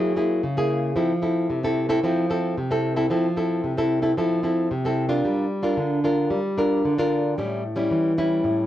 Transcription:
0.00 0.41 F#3 medium
0.00 0.13 A#3 medium
0.00 0.13 E4 medium
0.00 0.13 G#4 medium
0.16 0.42 A#3 soft
0.16 0.42 E4 medium
0.16 0.42 G#4 medium
0.43 0.94 C#3 medium
0.57 0.93 A#3 medium
0.57 0.93 E4 medium
0.57 0.93 G#4 medium
0.96 1.47 F3 medium
0.96 1.12 C4 medium
0.96 1.12 E4 medium
0.96 1.12 A4 medium
1.22 1.58 C4 soft
1.22 1.59 E4 soft
1.22 1.59 A4 medium
1.50 2.01 C3 medium
1.63 1.86 C4 medium
1.63 1.86 E4 medium
1.63 1.86 A4 medium
1.89 1.99 C4 medium
1.89 1.99 E4 medium
1.89 1.99 A4 medium
2.03 2.54 F3 medium
2.03 2.26 C4 medium
2.03 2.26 E4 medium
2.03 2.26 A4 medium
2.30 2.55 C4 medium
2.30 2.55 E4 medium
2.30 2.55 A4 medium
2.58 3.08 C3 medium
2.71 2.93 C4 medium
2.71 2.93 E4 medium
2.71 2.93 A4 medium
2.96 3.06 C4 medium
2.96 3.06 E4 medium
2.96 3.06 A4 medium
3.10 3.61 F3 medium
3.10 3.26 C4 medium
3.10 3.26 E4 medium
3.10 3.26 A4 medium
3.36 3.72 C4 soft
3.36 3.73 E4 soft
3.36 3.73 A4 medium
3.64 4.14 C3 medium
3.78 4.00 C4 medium
3.78 4.00 E4 medium
3.78 4.00 A4 medium
4.02 4.12 C4 medium
4.02 4.12 E4 medium
4.02 4.12 A4 medium
4.18 4.68 F3 medium
4.18 4.40 C4 soft
4.18 4.40 E4 medium
4.18 4.40 A4 medium
4.43 4.69 C4 medium
4.43 4.69 E4 soft
4.43 4.69 A4 medium
4.71 5.21 C3 medium
4.85 5.07 C4 medium
4.85 5.07 E4 medium
4.85 5.07 A4 medium
5.09 5.45 D4 medium
5.09 5.46 F4 medium
5.09 5.46 A#4 medium
5.25 5.75 G3 medium
5.63 5.99 D4 medium
5.63 5.99 F4 medium
5.63 6.00 A#4 medium
5.77 6.28 D3 medium
6.04 6.38 D4 medium
6.04 6.38 F4 medium
6.04 6.39 A#4 medium
6.30 6.81 G3 medium
6.58 6.93 D4 medium
6.58 6.93 F4 medium
6.58 6.94 A#4 medium
6.85 7.35 D3 medium
6.98 7.34 D4 medium
6.98 7.34 F4 medium
6.98 7.34 A#4 medium
7.38 7.88 A2 medium
7.38 7.63 G3 soft
7.38 7.63 C#4 medium
7.38 7.63 E4 medium
7.76 8.12 G3 medium
7.76 8.13 C#4 medium
7.76 8.13 E4 medium
7.91 8.42 E3 medium
8.18 8.66 G3 medium
8.18 8.66 C#4 medium
8.18 8.66 E4 medium
8.44 8.66 A2 medium

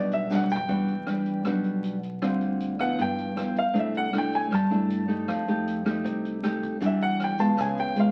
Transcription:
0.00 0.64 B1 medium
0.00 0.66 B2 medium
0.00 0.26 G3 medium
0.00 0.27 D4 medium
0.00 0.27 F#4 medium
0.00 0.12 D5 medium
0.11 0.30 E5 medium
0.11 closed hi-hat soft
0.11 shaker soft
0.30 0.54 G3 medium
0.30 0.54 D4 medium
0.30 0.55 F#4 medium
0.30 snare soft
0.30 shaker medium
0.35 0.51 F#5 medium
0.44 mid tom soft
0.50 1.42 G5 medium
0.50 shaker medium
0.56 floor tom medium
0.68 1.41 E2 medium
0.68 1.43 E3 medium
0.68 0.93 G3 medium
0.68 0.93 D4 medium
0.68 0.93 F#4 medium
0.68 kick medium
0.68 closed hi-hat soft
0.88 closed hi-hat soft
1.07 1.42 G3 medium
1.07 1.42 D4 medium
1.07 cross-stick medium
1.07 closed hi-hat soft
1.26 closed hi-hat soft
1.45 2.17 B1 medium
1.45 2.20 B2 medium
1.45 1.97 G3 medium
1.45 1.97 D4 soft
1.45 1.97 F#4 medium
1.45 kick medium
1.45 cross-stick medium
1.45 closed hi-hat soft
1.64 closed hi-hat soft
1.84 closed hi-hat soft
2.03 closed hi-hat soft
2.22 2.94 D2 medium
2.22 2.96 D3 medium
2.22 2.76 G3 medium
2.22 2.76 C4 medium
2.22 2.76 F4 medium
2.22 kick soft
2.22 cross-stick medium
2.22 closed hi-hat soft
2.41 closed hi-hat soft
2.60 closed hi-hat soft
2.79 3.33 F3 medium
2.79 3.34 B3 medium
2.79 3.34 E4 medium
2.79 2.98 F#5 medium
2.79 cross-stick medium
2.79 closed hi-hat soft
2.98 3.71 G1 medium
2.98 3.73 G2 medium
2.98 3.53 G5 medium
2.98 kick medium
2.98 closed hi-hat soft
3.18 closed hi-hat soft
3.36 3.62 F3 medium
3.36 3.62 B3 soft
3.36 3.62 E4 medium
3.36 cross-stick medium
3.36 closed hi-hat soft
3.56 3.76 F5 medium
3.56 closed hi-hat soft
3.73 4.48 C2 medium
3.73 4.49 C3 medium
3.73 4.09 A3 medium
3.73 4.10 D4 medium
3.73 4.10 E4 medium
3.73 kick medium
3.73 closed hi-hat soft
3.79 3.96 E5 medium
3.94 4.14 F#5 medium
3.94 closed hi-hat soft
4.13 4.51 A3 medium
4.13 4.51 D4 medium
4.13 4.51 E4 medium
4.13 cross-stick medium
4.13 closed hi-hat soft
4.18 4.34 G5 medium
4.33 4.52 G#5 medium
4.33 closed hi-hat soft
4.51 5.24 G2 medium
4.51 5.26 G3 medium
4.51 5.64 A5 medium
4.51 kick medium
4.51 cross-stick medium
4.51 closed hi-hat soft
4.70 5.06 A3 medium
4.70 5.06 D4 medium
4.70 5.06 E4 medium
4.70 closed hi-hat soft
4.90 closed hi-hat soft
5.08 5.44 A3 medium
5.08 5.44 D#4 medium
5.08 5.44 G4 medium
5.08 closed hi-hat soft
5.28 6.01 F2 medium
5.28 6.03 F3 medium
5.28 kick medium
5.28 cross-stick medium
5.28 closed hi-hat soft
5.48 5.83 A3 medium
5.48 5.83 D#4 medium
5.48 5.83 G4 medium
5.48 closed hi-hat soft
5.67 closed hi-hat soft
5.85 6.40 A3 medium
5.85 6.40 D#4 medium
5.85 6.40 G4 medium
5.85 cross-stick medium
5.85 closed hi-hat soft
6.04 6.77 C2 medium
6.04 6.79 C3 medium
6.04 kick medium
6.04 closed hi-hat soft
6.25 closed hi-hat soft
6.43 6.80 A3 soft
6.43 6.80 D#4 medium
6.43 6.80 G4 medium
6.43 cross-stick medium
6.43 closed hi-hat soft
6.63 kick medium
6.63 closed hi-hat soft
6.81 7.54 E2 medium
6.81 7.55 E3 medium
6.81 7.36 G3 medium
6.81 7.36 D4 medium
6.81 7.36 F#4 medium
6.81 kick medium
6.81 closed hi-hat soft
6.81 shaker medium
6.86 7.02 E5 medium
7.01 7.20 F#5 medium
7.01 closed hi-hat soft
7.01 shaker soft
7.20 cross-stick medium
7.20 closed hi-hat soft
7.24 7.40 G5 medium
7.38 7.93 G#3 medium
7.38 7.93 B3 medium
7.38 7.93 F4 medium
7.38 7.58 A5 medium
7.38 closed hi-hat soft
7.38 shaker medium
7.57 8.12 C#2 medium
7.57 8.12 C#3 medium
7.57 kick medium
7.57 cross-stick medium
7.57 closed hi-hat soft
7.57 shaker medium
7.61 7.78 G#5 medium
7.77 7.97 G5 medium
7.77 closed hi-hat soft
7.77 shaker soft
7.96 8.12 G#3 medium
7.96 8.12 B3 medium
7.96 8.12 F4 medium
7.96 closed hi-hat soft
8.00 8.12 F5 medium

